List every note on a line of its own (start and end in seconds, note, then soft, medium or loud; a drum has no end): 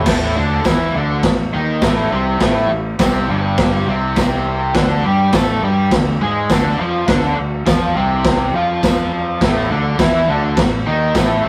0.06 0.34 A1 loud
0.06 0.36 A2 loud
0.06 0.36 A3 loud
0.06 kick loud
0.06 snare loud
0.06 crash loud
0.06 crash medium
0.36 0.64 D2 loud
0.36 0.65 D3 medium
0.36 0.65 D4 medium
0.64 0.92 E2 medium
0.64 0.94 E3 medium
0.64 0.95 E4 loud
0.64 kick loud
0.64 snare loud
0.64 tambourine loud
0.64 crash medium
0.94 1.22 D2 loud
0.94 1.24 D3 medium
0.94 1.24 D4 loud
1.23 1.51 A1 medium
1.23 1.48 A2 medium
1.23 kick loud
1.23 snare loud
1.23 crash medium
1.53 1.81 D#2 loud
1.53 1.82 D#3 medium
1.53 1.83 D#4 loud
1.82 2.10 A1 medium
1.82 2.10 A2 medium
1.82 2.12 A3 loud
1.82 kick loud
1.82 snare loud
1.82 tambourine medium
1.82 crash medium
2.11 2.39 C2 loud
2.11 2.40 C3 loud
2.11 2.41 C4 loud
2.40 2.68 A1 loud
2.40 2.69 A2 loud
2.40 2.70 A3 loud
2.40 kick loud
2.40 snare loud
2.40 crash medium
2.70 2.98 A1 medium
2.70 2.94 A2 medium
2.99 3.27 C2 medium
2.99 3.28 C3 medium
2.99 3.29 C4 loud
2.99 kick loud
2.99 snare loud
2.99 tambourine loud
2.99 crash medium
3.28 3.83 G1 loud
3.28 3.87 G2 medium
3.28 3.88 G3 loud
3.58 kick loud
3.58 snare loud
3.58 crash medium
3.87 4.71 C2 loud
3.87 4.74 C3 medium
3.87 4.75 C4 loud
4.16 kick loud
4.16 snare loud
4.16 tambourine medium
4.16 crash medium
4.75 5.02 D2 loud
4.75 5.03 D3 loud
4.75 5.04 D4 loud
4.75 kick loud
4.75 snare loud
4.75 crash medium
5.04 5.32 G2 loud
5.04 5.33 G3 loud
5.04 5.33 G4 loud
5.32 5.61 A2 medium
5.32 5.62 A3 medium
5.32 5.63 A4 loud
5.32 kick loud
5.32 snare loud
5.32 tambourine medium
5.32 crash medium
5.63 5.90 G2 loud
5.63 5.92 G3 medium
5.63 5.92 G4 loud
5.91 6.19 D2 medium
5.91 6.16 D3 medium
5.91 kick loud
5.91 snare loud
5.91 crash medium
6.21 6.49 G#2 loud
6.21 6.50 G#3 loud
6.21 6.50 G#4 medium
6.50 6.77 D2 medium
6.50 6.79 D3 medium
6.50 6.79 D4 loud
6.50 kick loud
6.50 snare loud
6.50 tambourine loud
6.50 crash medium
6.79 7.07 F2 medium
6.79 7.07 F3 medium
6.79 7.08 F4 loud
7.08 7.35 D2 loud
7.08 7.35 D3 loud
7.08 7.37 D4 loud
7.08 kick loud
7.08 snare loud
7.08 crash medium
7.36 7.66 D2 medium
7.36 7.60 D3 medium
7.66 7.94 F2 medium
7.66 7.95 F3 loud
7.66 7.95 F4 medium
7.66 kick loud
7.66 snare loud
7.66 tambourine loud
7.66 crash medium
7.96 8.50 C2 loud
7.96 8.53 C3 medium
7.96 8.54 C4 medium
8.24 kick loud
8.24 snare loud
8.24 crash medium
8.54 9.37 F2 loud
8.54 9.41 F3 medium
8.54 9.41 F4 medium
8.83 kick loud
8.83 snare loud
8.83 tambourine loud
8.83 crash medium
9.41 9.69 A1 loud
9.41 9.70 A2 medium
9.41 9.71 A3 medium
9.41 kick loud
9.41 snare loud
9.41 crash medium
9.70 9.98 D2 medium
9.70 9.99 D3 medium
9.70 9.99 D4 loud
9.99 10.26 E2 medium
9.99 10.28 E3 medium
9.99 10.28 E4 loud
9.99 kick loud
9.99 snare loud
9.99 tambourine medium
9.99 crash medium
10.28 10.55 D2 medium
10.28 10.57 D3 medium
10.28 10.58 D4 loud
10.57 10.84 A1 medium
10.57 10.81 A2 medium
10.57 kick loud
10.57 snare loud
10.57 crash medium
10.86 11.14 D#2 loud
10.86 11.15 D#3 medium
10.86 11.15 D#4 loud
11.15 11.42 A1 medium
11.15 11.44 A2 medium
11.15 11.44 A3 loud
11.15 kick loud
11.15 snare loud
11.15 tambourine loud
11.15 crash medium
11.45 11.49 C2 loud
11.45 11.49 C3 loud